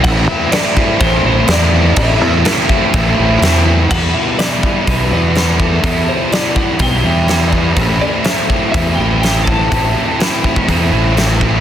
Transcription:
<<
  \new Staff \with { instrumentName = "Clean electric guitar" } { \time 4/4 \key e \minor \tempo 4 = 124 fis''8 e''8 d''4 c''8 c''8 d''4 | e''2. r4 | fis''8 e''8 d''4 b'8 b'4 a'8 | a'8 c''8 d''8 fis''8 g''4. r8 |
r8 d''8 e''4 e''8 g''8 g''8 a''8~ | a''4 r2. | }
  \new Staff \with { instrumentName = "Overdriven electric guitar" } { \time 4/4 \key e \minor <a, e a c' e'>8 <a c' e'>8 <e a c' e'>8 <a c' e'>8 <a, e a c' e'>8 <a c' e'>8 <e a c' e'>8 <a c' e'>8 | <a, e a c' e'>8 <a c' e'>8 <e a c' e'>8 <a c' e'>8 <a, e a c' e'>8 <a c' e'>8 <e a c' e'>8 <a c' e'>8 | <e, b, e g b e'>4 <e g b e'>4 <e, b, e g b e'>8 <e g b e'>8 <e g b e'>4 | <e, b, e g b e'>4 <e g b e'>4 <e, b, e g b e'>8 <e g b e'>8 <e g b e'>4 |
<a, e a c' e'>4 <e a c' e'>4 <a, e a c' e'>8 <a c' e'>8 <e a c' e'>4 | <a, e a c' e'>4 <e a c' e'>4 <a, e a c' e'>8 <a c' e'>8 <e a c' e'>4 | }
  \new Staff \with { instrumentName = "Fingered electric bass" } { \clef bass \time 4/4 \key e \minor a,,8 e,8 r4 a,,8 a,,8 e,4 | a,,8 e,8 r4 a,,8 a,,8 e,4 | e,8 r4. b,,8 e,4. | e,8 r4. b,,8 e,4. |
a,,8 r4. e,8 a,,4. | a,,8 r4. e,8 a,,4. | }
  \new DrumStaff \with { instrumentName = "Drums" } \drummode { \time 4/4 <cymc bd>4 <cymc sn>8 bd8 <cymc bd>4 <cymc sn>4 | <cymc bd>4 <cymc sn>8 bd8 <cymc bd>4 <cymc sn>4 | <cymc bd>4 <hho sn>8 bd8 <hho bd>4 <hho sn>8 bd8 | <hho bd>4 <hho sn>8 bd8 <hho bd>4 <hho sn>8 bd8 |
<hho bd>4 <hho sn>8 bd8 <hho bd>4 <hho sn>8 bd8 | <hho bd>4 <hho sn>8 bd16 bd16 <hho bd>4 <hho sn>8 bd8 | }
>>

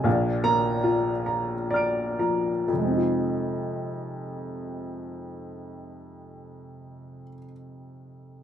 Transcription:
<<
  \new Staff \with { instrumentName = "Upright piano" } { \time 6/8 \key f \dorian \tempo 4. = 42 << { r8 bes''4 r8 <bes'' f''' d''''>4 | <f, c aes c' ees' f'>2.~ | <f, c aes c' ees' f'>2. | } \\ { f''4 f'8 bes''8 d''8 bes''8 | r2. | r2. | } >> }
  \new Staff \with { instrumentName = "Upright piano" } { \clef bass \time 6/8 \key f \dorian <bes,, bes,>8 bes4 r4 f8 | r2. | r2. | }
>>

